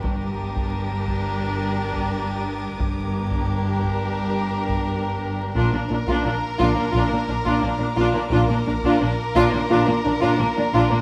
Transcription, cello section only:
X:1
M:4/4
L:1/16
Q:1/4=87
K:Glyd
V:1 name="Cello section" clef=bass
G,,16 | G,,16 | ^A,, A,, A,, A,, A,, z A,, A,, A,, A,, A,, A,, A,, A,, A,, A,, | ^A,, A,, A,, A,, A,, z A,, A,, A,, A,, A,, A,, A,, A,, A,, A,, |]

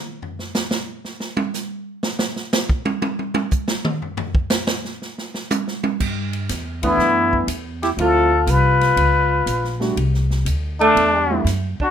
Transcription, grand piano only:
X:1
M:4/4
L:1/8
Q:"Swing" 1/4=121
K:G
V:1 name="Grand piano"
z8 | z8 | z8 | z3 [E,A,B,D]3 z2 |
[=F,A,CE] z6 [G,A,D^F] | z4 z [G,A,DE] z2 |]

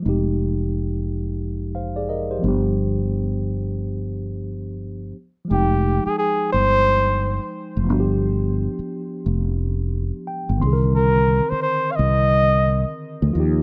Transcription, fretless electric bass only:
X:1
M:4/4
L:1/16
Q:"Swing 16ths" 1/4=88
K:Fdor
V:1 name="Fretless electric bass" clef=bass
F,,,12- F,,,2 G,,,2- | G,,,12- G,,,2 z2 | F,,,3 z3 G,,,4- G,,, z2 F,,, G,,,2- | G,,,3 z3 F,,,4- F,,, z2 G,,, C,,2- |
C,,3 z3 C,,4- C,, z2 D,, E,,2 |]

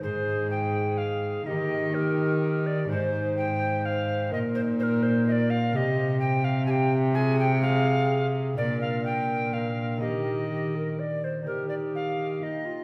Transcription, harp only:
X:1
M:3/4
L:1/8
Q:1/4=126
K:Eb
V:1 name="Harp"
[A,EA]6 | [B,EG]2 [B,EG]4 | [A,Ec]6 | [EB]4 [FB]2 |
[CG]4 [CG]2 | [A,CF]2 [A,CF]4 | [B,DF]4 [B,DF]2 | [B,EG]6 |
[B,EG]4 [B,EG]2 |]
V:2 name="Harp" clef=bass
A,,6 | E,6 | A,,6 | B,,6 |
C,6- | C,6 | B,,6 | E,6 |
E,6 |]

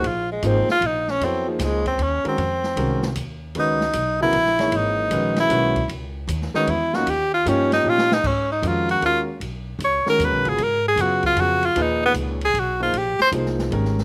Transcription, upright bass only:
X:1
M:3/4
L:1/8
Q:"Swing" 1/4=154
K:Dbmix
V:1 name="Upright bass" clef=bass
B,,,2 A,,, z B,,,2 | F,,2 D,,2 E,, z | F,,2 =C,,2 E,,2 | D,,2 C,,2 B,,,2 |
A,,,2 B,,,2 C,,2 | D,,2 E,, z _F,,2 | E,,2 =G,,2 B,,2 | [K:G#dor] G,,2 E,,2 D,,2 |
B,,,2 C,, z (3D,, B,,, G,,, | G,,2 F,,2 E,,2 | D,,2 C,,2 B,,,2 | A,,, z ^B,,,2 G,,,2 |]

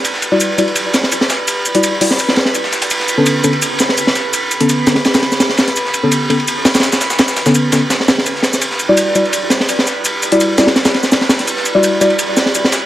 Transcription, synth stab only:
X:1
M:4/4
L:1/16
Q:1/4=168
K:Edor
V:1 name="Synth stab"
z3 [G,EFd]3 [G,EFd] z8 z | z3 [G,EFd]3 [G,EFd] z8 z | z3 [D,B,CA]3 [D,B,CA] z8 z | z3 [D,B,CA]3 [D,B,CA] z8 z |
z3 [D,B,CA]3 [D,B,CA] z8 z | z3 [D,B,CA]3 [D,B,CA] z8 z | z3 [G,EFd]3 [G,EFd] z8 z | z3 [G,EFd]3 [G,EFd] z8 z |
z3 [G,EFd]3 [G,EFd] z8 z |]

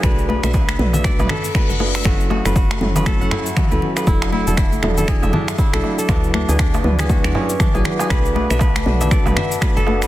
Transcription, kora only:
X:1
M:4/4
L:1/16
Q:"Swing 16ths" 1/4=119
K:Bdor
V:1 name="Kora"
B z B e B z2 e d B A z B f z e | F z F B F z2 B A f E z F B z B | E z E A E z2 A G e D z E A z A | D z D G D z2 G F d C z D G z G |
B z B e B z2 e d B e z B A z B |]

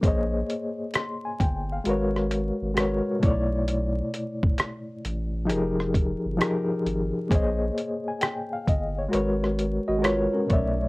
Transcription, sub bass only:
X:1
M:4/4
L:1/16
Q:"Swing 16ths" 1/4=66
K:Ab
V:1 name="Sub bass" clef=bass
B,,,2 z4 G,,,2 A,,,3 A,,,2 z =B,,,2- | =B,,,2 z4 =A,,,2 F,,,3 G,,, z2 _A,,, z | B,,,2 z4 G,,,2 A,,,3 A,,,2 z =B,,,2 |]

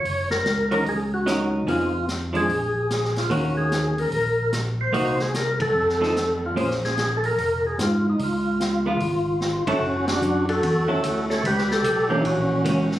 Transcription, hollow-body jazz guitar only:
X:1
M:4/4
L:1/8
Q:"Swing" 1/4=148
K:Db
V:1 name="Hollow-body jazz guitar"
z3 [G,DEB] z2 [G,DEB]2 | [F,_CEA] z2 [F,A,=D] z4 | [E,B,DG]3 z4 z | [B,EG] z4 [F,CE=A] z2 |
[B,DAc] z6 z | z3 [A,_CF] z3 [G,D=E=A] | [K:F#m] z4 z [F,CEA]3 | z3 [E,^A,C]3 [E,A,C] z |]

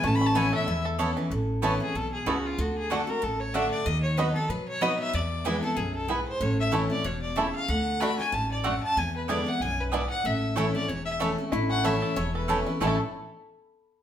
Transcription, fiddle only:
X:1
M:4/4
L:1/16
Q:"Swing" 1/4=188
K:A
V:1 name="Fiddle"
(3a2 b2 a2 g2 e4 z6 | z4 B2 G2 A2 G2 F2 =F2 | F2 G2 A2 _B2 A2 c2 e2 d2 | ^d2 c2 B2 A2 B2 c2 d2 e2 |
d6 A2 G2 A2 B2 =c2 | c2 e2 z2 d2 c2 d2 e2 =f2 | f4 b2 g2 a2 d2 f2 a2 | g2 B2 d2 f2 g2 B2 d2 f2 |
e6 d2 c2 e2 z4 | z2 f2 e4 c2 B4- B z | A2 z12 z2 |]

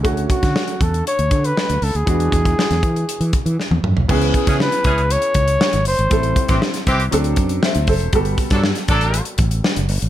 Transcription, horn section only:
X:1
M:4/4
L:1/16
Q:1/4=119
K:C#phr
V:1 name="Horn section"
z16 | z16 | z3 [E,CG] z2 [E,CG]2 z8 | z3 [E,=C=G] z2 [E,CG]2 z8 |
z3 [F,DA] z2 [F,DA]3 z6 z |]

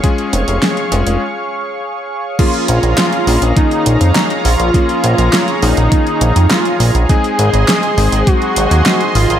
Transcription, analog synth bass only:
X:1
M:4/4
L:1/16
Q:1/4=102
K:Bbm
V:1 name="Analog synth bass" clef=bass
z2 F,,, F,,, z2 F,,, F,,, z8 | z2 B,,, B,,, z2 B,,, B,,, z2 B,,, F,, z2 B,,, B,,, | z2 B,,, B,,, z2 B,,, B,,, z2 B,,, F,, z2 B,,, B,,, | z2 A,,, A,,, z2 A,,, A,,, z2 A,,, E,, z2 A,,, A,,, |]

